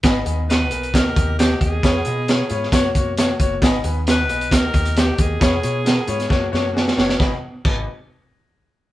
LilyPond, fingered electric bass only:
\new Staff \with { instrumentName = "Fingered electric bass" } { \clef bass \time 4/4 \key gis \minor \tempo 4 = 134 gis,,8 dis,4 b,,8 dis,8 dis,4 dis,8 | eis,8 b,4 gis,8 fis,8 fis,4 fis,,8 | gis,,8 dis,4 b,,8 dis,8 dis,4 dis,8 | eis,8 b,4 gis,8 fis,8 fis,4 fis,,8 |
gis,,8 r8 gis,,8 r2 r8 | }